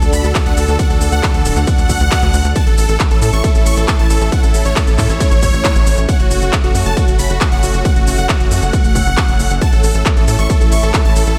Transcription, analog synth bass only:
0.02 0.11 D2 medium
0.13 0.22 D2 loud
0.24 0.33 D2 loud
0.46 0.56 D2 medium
0.57 0.67 D2 loud
0.68 0.78 D2 medium
0.90 1.00 D2 medium
1.01 1.11 D2 loud
1.12 1.22 D2 medium
1.34 1.44 D2 medium
1.45 1.55 D1 loud
1.56 1.66 D2 loud
1.78 1.88 D2 medium
1.89 1.99 D2 loud
2.01 2.10 D2 medium
2.23 2.32 D2 medium
2.34 2.43 D2 loud
2.45 2.54 D2 medium
2.67 2.76 A1 medium
2.78 2.87 A1 loud
2.89 2.98 A1 medium
3.11 3.20 A1 medium
3.22 3.31 A2 loud
3.33 3.42 A1 loud
3.55 3.64 A1 medium
3.66 3.75 A1 loud
3.77 3.86 A1 loud
3.99 4.08 A1 medium
4.10 4.19 A1 loud
4.21 4.30 A1 medium
4.43 4.53 A1 medium
4.54 4.64 A1 loud
4.65 4.75 A1 medium
4.87 4.97 A1 medium
4.98 5.08 A2 loud
5.09 5.19 A1 medium
5.31 5.41 A1 medium
5.42 5.52 A1 loud
5.54 5.63 A1 medium
5.75 5.85 A1 medium
5.87 5.96 A1 loud
5.98 6.07 A1 medium
6.20 6.29 F#1 medium
6.31 6.40 F#1 loud
6.42 6.51 F#1 medium
6.64 6.73 F#1 medium
6.75 6.84 F#2 loud
6.86 6.95 F#1 loud
7.08 7.17 F#1 medium
7.19 7.28 F#1 loud
7.30 7.39 F#1 loud
7.52 7.61 F#1 medium
7.63 7.72 F#1 loud
7.74 7.83 F#1 medium
7.96 8.05 F#1 medium
8.07 8.17 F#1 loud
8.18 8.28 F#1 medium
8.40 8.50 F#1 medium
8.51 8.61 F#2 loud
8.62 8.72 F#1 loud
8.84 8.94 F#1 medium
8.95 9.05 F#1 loud
9.06 9.16 F#1 loud
9.28 9.38 F#1 medium
9.40 9.49 F#1 loud
9.51 9.60 F#1 loud
9.73 9.82 A1 medium
9.84 9.93 A1 loud
9.95 10.04 A1 medium
10.17 10.26 A1 medium
10.28 10.37 A2 loud
10.39 10.48 A1 loud
10.61 10.70 A1 medium
10.72 10.81 A1 loud
10.83 10.92 A1 loud
11.05 11.14 A1 medium
11.16 11.25 A1 loud
11.27 11.36 A1 medium

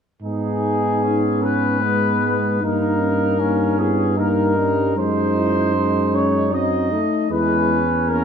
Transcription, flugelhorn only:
0.22 1.05 D#4 soft
1.04 1.84 C#4 soft
1.82 2.62 B3 soft
2.62 3.41 D#4 soft
3.40 4.16 C#4 soft
4.17 4.94 D#4 soft
4.97 7.00 D#4 soft
7.31 8.24 C#4 soft

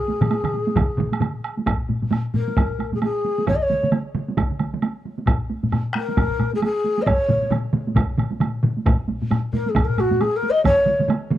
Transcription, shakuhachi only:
0.00 1.22 G#4 medium
2.35 2.90 A#4 medium
2.94 3.02 G#4 medium
3.03 3.45 G#4 medium
3.48 3.56 C#5 medium
3.55 3.63 D#5 medium
3.62 3.93 C#5 medium
5.97 6.50 A#4 medium
6.55 6.62 G#4 medium
6.64 7.03 G#4 medium
7.02 7.08 D#5 medium
7.06 7.52 C#5 medium
9.53 9.71 A#4 medium
9.69 9.86 G#4 medium
9.84 10.01 A#4 medium
9.99 10.22 F#4 medium
10.21 10.37 G#4 medium
10.36 10.51 A#4 medium
10.50 10.64 D#5 medium
10.64 11.06 C#5 medium

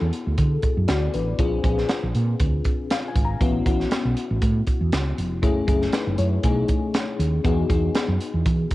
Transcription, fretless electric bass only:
0.01 0.10 E2 medium
0.27 0.35 D2 medium
0.38 0.57 D3 medium
0.77 0.86 F#2 medium
0.89 1.07 D2 medium
1.14 1.33 A1 medium
1.39 1.58 A#1 medium
1.64 1.83 A#1 medium
2.03 2.12 A#1 medium
2.15 2.33 A#2 medium
2.40 2.59 D2 medium
3.16 3.34 G#1 medium
3.41 3.60 A1 medium
3.66 3.85 A1 medium
4.05 4.14 B1 medium
4.31 4.39 A1 medium
4.42 4.61 A2 medium
4.81 4.89 E2 medium
4.92 5.11 C#2 medium
5.18 5.43 F1 medium
5.43 5.62 F#1 medium
5.68 5.87 F#1 medium
6.07 6.15 F#1 medium
6.18 6.37 F#2 medium
6.44 6.62 B1 medium
7.19 7.38 D#2 medium
7.45 7.63 E2 medium
7.70 7.89 E2 medium
8.08 8.17 F#2 medium
8.34 8.42 E2 medium
8.46 8.64 E3 medium

